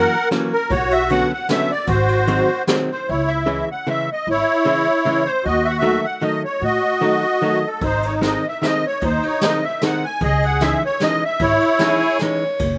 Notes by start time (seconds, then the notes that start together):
Already playing: E3 F#3 A#3 C#4 A#4 F#5
0.31 E3 F#3 A#3 C#4, snare, ride
0.53 A#4
0.70 B1 F#4 C#5, kick, ride
0.91 E5, ride
1.09 D3 F#3 B3 C#4 F#5, ride
1.33 F#5
1.49 D3 F#3 B3 C#4 E5, snare, ride
1.71 D5
1.87 G#1 F#4 C5, kick, ride
2.08 ride
2.27 D#3 F#3 G#3 C4, ride
2.67 D#3 F#3 G#3 C4, snare, ride
2.91 C5
3.09 C#2 E4 C#5
3.28 E5
3.46 C#3 E3 G#3 C#4
3.72 F#5
3.87 C#3 E3 G#3 C#4 E5
4.12 D#5
4.27 G#1 E4 C#5
4.65 C#3 E3 G#3 C#4
5.05 C#3 E3 G#3 C#4
5.26 C5
5.44 D#2 F#4 D#5
5.65 E5
5.69 F#5
5.78 D#3 E5
5.82 F#3 A3 D#4
6.05 F#5
6.21 D#3 F#3 A3 D#4 D#5
6.45 C#5
6.61 A2 F#4 D#5
7.01 D#3 F#3 A3 D#4
7.42 D#3 F#3 A3 D#4
7.67 A4
7.81 G#1 D#4 C5, kick, ride
8.03 C#5, ride
8.21 D#3 G#3 C4 D#4, snare, ride
8.27 D#5
8.49 E5
8.62 D#3 G#3 C4 D#4 D#5, snare, ride
8.87 C#5
9.01 D#2 D#4 C5, kick, ride
9.23 ride
9.27 C#5
9.41 D#3 G#3 C4 D#4 D#5, snare, ride
9.64 E5
9.81 D#3 G#3 C4 D#4, snare, ride
9.86 F#5
10.04 G#5
10.21 C#2 G#4 D#5, kick, ride
10.42 F#5, ride
10.61 E3 G#3 C#4 D#4 E5, snare, ride
10.86 C#5
11.00 E3 G#3 C#4 D#4 D#5, snare, ride
11.25 E5
11.39 G#1 E4 C#5, kick, ride
11.61 ride
11.79 E3 G#3 C#4 D#4 G#4, snare, ride
12.19 E3 G#3 D#4 C#5, snare, ride
12.23 C#4
12.59 F#1, kick, ride